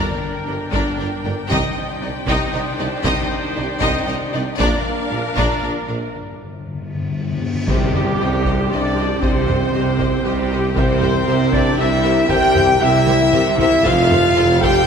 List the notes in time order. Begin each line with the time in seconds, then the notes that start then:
Already playing: G2 D3 D4 A#4 D5 G5 A#5
0.46 G1 G2 D4 A#4 G5
0.72 G1 G2 D4 D5 A#5, taiko
0.98 G1 G2 D4 D5 A#5
1.24 G1 G2 D4 A#4 G5
1.49 C2 C3 D#3 D4 D#4 G4 C5 D5 D#5 G5, taiko
2.01 C2 C3 D#4 D5 D#5
2.27 C2 C3 D#4 D#5 G5, taiko
2.52 C2 C3 D#4 D#5 G5
2.79 C2 C3 D#4 D5 D#5
3.04 C2 C3 D#4 D#5 G5, taiko
3.55 C2 C3 D#4 D5 D#5
3.81 C2 C3 D#4 D#5 G5, taiko
4.07 C2 C3 D#4 D#5 G5
4.33 C2 C3 D#4 D5 D#5
4.59 A#1 A#2 F3 D4 A#4 D5 F5 A#5, taiko
5.10 A#1 A#2 D4 A#4 F5
5.36 A#1 A#2 D4 D5 A#5, taiko
5.62 A#1 A#2 D4 D5 A#5
5.88 A#1 A#2 D4 A#4 F5
6.14 G2
6.21 G2
6.29 G2
6.36 G2
6.44 G2
6.50 G2
6.59 G2
6.66 G2
6.73 G2
6.80 G2
6.88 G2
6.94 G2
7.02 G2
7.09 G2
7.17 G2
7.24 G2
7.32 G2
7.39 G2
7.47 G2
7.54 G2
7.67 C2 C3 G3 C4 G4 C5 D#5 G5, taiko, tam-tam
7.94 G4 C5 D#5, taiko low-mid
8.18 C2 C3 G4 C5 D#5
8.44 G4 C5 D#5, taiko
8.69 C2 C3 D4 G4 C5 D5
8.73 D#5
8.95 G4 C5 D#5
9.20 C2 C3 C4 G4 C5 D#5, taiko
9.25 C5
9.47 G4 C5 D#5, taiko low-mid
9.73 C2 C3 G4 C5 D#5
9.99 G4 C5 D#5, taiko
10.23 C2 C3 G3 G4 C5 D#5
10.50 G4 C5 D#5
10.75 C2 C3 C4 G4 A#4 C5 E5, taiko
11.01 G4 A#4 C5 E5, taiko low-mid
11.26 C2 C3 G4 A#4 C5 E5
11.51 D4 G4 A#4 D5, taiko
11.55 C5 E5
11.77 C2 C3 E4 G4 A#4 C5 E5
12.04 G4 A#4 C5 E5
12.28 C2 C3 G4 A#4 C5 E5 G5, taiko
12.54 G4 A#4 C5 E5, taiko low-mid
12.79 C2 C3 E4 G4 A#4 C5 E5
13.06 G4 A#4 C5 E5, taiko high
13.32 C2 C3 G4 A#4 C5 E5, taiko mid
13.57 E4 G4 A#4 C5 E5, taiko low
13.83 F1 F2 C4 F4 A4 C5 F5, taiko
14.09 A4 C5 F5, taiko low-mid
14.35 F1 F2 A4 C5 F5
14.59 G4 A4 C5 F5 G5, taiko